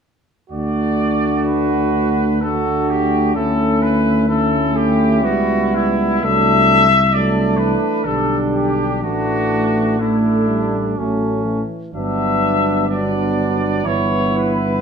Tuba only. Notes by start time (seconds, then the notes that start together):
0.52 D2
3.36 D2
5.24 C#2
6.23 C2
8.06 B1
9.02 A1
10.99 A1
11.94 G1
13.85 G1